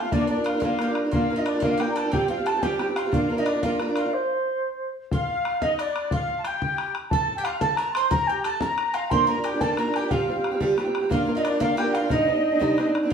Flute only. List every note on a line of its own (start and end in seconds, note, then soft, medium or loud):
0.00 0.14 F5 medium
0.12 0.28 D5 loud
0.30 0.44 D5 medium
0.48 0.62 F5 medium
0.63 0.91 F5 loud
1.14 1.40 F5 loud
1.39 1.46 D#5 medium
1.47 1.65 D5 medium
1.64 1.82 F5 loud
1.81 1.90 G5 medium
1.91 1.97 A#5 medium
1.96 2.12 A5 medium
2.12 2.28 G5 loud
2.29 2.48 F5 medium
2.46 2.63 A5 medium
2.62 2.97 G5 loud
2.96 3.12 F5 medium
3.13 3.40 F5 loud
3.39 3.47 D#5 medium
3.45 3.64 D5 medium
3.63 3.79 F5 loud
3.96 4.15 F5 medium
4.14 4.90 C5 medium
5.14 5.64 F5 loud
5.63 5.82 D#5 medium
5.81 6.13 D5 medium
6.13 6.44 F5 loud
6.46 6.92 G5 loud
7.10 7.34 A5 loud
7.36 7.45 G5 medium
7.44 7.59 F5 medium
7.60 7.78 A5 loud
7.76 7.92 A#5 loud
7.93 8.09 C6 loud
8.10 8.29 A#5 loud
8.27 8.44 G5 loud
8.44 8.63 A5 loud
8.61 8.95 A#5 loud
8.94 9.12 F5 loud
9.10 9.24 C6 loud
9.24 9.46 A#5 medium
9.24 9.29 C6 medium
9.45 9.62 G5 medium
9.61 9.78 A5 loud
9.78 9.97 A#5 medium
9.96 10.12 G5 medium
10.11 10.61 F5 medium
11.11 11.34 F5 loud
11.37 11.44 D#5 medium
11.45 11.63 D5 medium
11.61 11.78 F5 loud
11.78 11.95 G5 loud
11.94 12.11 F5 loud
12.12 12.91 D#5 loud